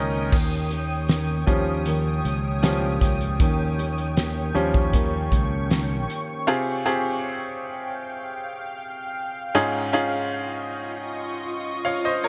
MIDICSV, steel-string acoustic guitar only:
0, 0, Header, 1, 2, 480
1, 0, Start_track
1, 0, Tempo, 769231
1, 203, Time_signature, 4, 2, 24, 8
1, 7664, End_track
2, 0, Start_track
2, 0, Title_t, "Steel-string acoustic guitar"
2, 0, Program_c, 0, 25
2, 0, Note_on_c, 0, 51, 83
2, 0, Note_on_c, 0, 58, 72
2, 0, Note_on_c, 0, 61, 72
2, 0, Note_on_c, 0, 67, 77
2, 198, Note_off_c, 0, 51, 0
2, 200, Note_on_c, 0, 51, 72
2, 204, Note_off_c, 0, 58, 0
2, 205, Note_off_c, 0, 61, 0
2, 206, Note_on_c, 0, 58, 71
2, 208, Note_on_c, 0, 61, 69
2, 210, Note_off_c, 0, 67, 0
2, 213, Note_on_c, 0, 67, 74
2, 430, Note_off_c, 0, 67, 0
2, 438, Note_on_c, 0, 67, 46
2, 440, Note_off_c, 0, 61, 0
2, 442, Note_off_c, 0, 51, 0
2, 444, Note_off_c, 0, 58, 0
2, 448, Note_on_c, 0, 61, 44
2, 455, Note_on_c, 0, 58, 43
2, 677, Note_off_c, 0, 58, 0
2, 677, Note_on_c, 0, 51, 61
2, 680, Note_off_c, 0, 67, 0
2, 685, Note_off_c, 0, 61, 0
2, 685, Note_on_c, 0, 58, 59
2, 694, Note_on_c, 0, 61, 64
2, 698, Note_on_c, 0, 67, 58
2, 911, Note_off_c, 0, 67, 0
2, 919, Note_on_c, 0, 67, 49
2, 920, Note_off_c, 0, 51, 0
2, 922, Note_off_c, 0, 61, 0
2, 924, Note_off_c, 0, 58, 0
2, 930, Note_on_c, 0, 61, 45
2, 939, Note_on_c, 0, 58, 43
2, 1161, Note_off_c, 0, 58, 0
2, 1161, Note_off_c, 0, 67, 0
2, 1162, Note_on_c, 0, 51, 78
2, 1166, Note_off_c, 0, 61, 0
2, 1168, Note_on_c, 0, 58, 73
2, 1175, Note_on_c, 0, 61, 80
2, 1176, Note_on_c, 0, 67, 75
2, 1631, Note_off_c, 0, 51, 0
2, 1638, Note_on_c, 0, 51, 59
2, 1641, Note_off_c, 0, 58, 0
2, 1646, Note_off_c, 0, 61, 0
2, 1649, Note_on_c, 0, 58, 64
2, 1653, Note_on_c, 0, 61, 68
2, 1655, Note_off_c, 0, 67, 0
2, 1657, Note_on_c, 0, 67, 66
2, 2112, Note_off_c, 0, 51, 0
2, 2120, Note_off_c, 0, 58, 0
2, 2120, Note_on_c, 0, 51, 74
2, 2122, Note_off_c, 0, 61, 0
2, 2127, Note_on_c, 0, 58, 75
2, 2129, Note_on_c, 0, 61, 81
2, 2133, Note_off_c, 0, 67, 0
2, 2135, Note_on_c, 0, 67, 91
2, 2351, Note_off_c, 0, 67, 0
2, 2359, Note_on_c, 0, 67, 56
2, 2361, Note_off_c, 0, 51, 0
2, 2361, Note_off_c, 0, 61, 0
2, 2365, Note_off_c, 0, 58, 0
2, 2369, Note_on_c, 0, 61, 48
2, 2377, Note_on_c, 0, 58, 42
2, 2596, Note_on_c, 0, 51, 62
2, 2599, Note_off_c, 0, 58, 0
2, 2601, Note_off_c, 0, 67, 0
2, 2602, Note_off_c, 0, 61, 0
2, 2606, Note_on_c, 0, 58, 57
2, 2610, Note_on_c, 0, 61, 60
2, 2617, Note_on_c, 0, 67, 71
2, 2827, Note_off_c, 0, 67, 0
2, 2835, Note_on_c, 0, 67, 52
2, 2837, Note_off_c, 0, 61, 0
2, 2839, Note_off_c, 0, 51, 0
2, 2844, Note_off_c, 0, 58, 0
2, 2845, Note_on_c, 0, 61, 50
2, 3073, Note_on_c, 0, 51, 69
2, 3079, Note_off_c, 0, 61, 0
2, 3079, Note_off_c, 0, 67, 0
2, 3082, Note_on_c, 0, 58, 77
2, 3086, Note_on_c, 0, 61, 79
2, 3088, Note_on_c, 0, 67, 86
2, 3551, Note_off_c, 0, 51, 0
2, 3556, Note_off_c, 0, 58, 0
2, 3558, Note_on_c, 0, 51, 54
2, 3562, Note_off_c, 0, 61, 0
2, 3563, Note_on_c, 0, 58, 63
2, 3570, Note_on_c, 0, 61, 62
2, 3574, Note_off_c, 0, 67, 0
2, 3576, Note_on_c, 0, 67, 59
2, 4041, Note_off_c, 0, 51, 0
2, 4043, Note_off_c, 0, 58, 0
2, 4046, Note_off_c, 0, 61, 0
2, 4361, Note_off_c, 0, 67, 0
2, 7664, End_track
0, 0, End_of_file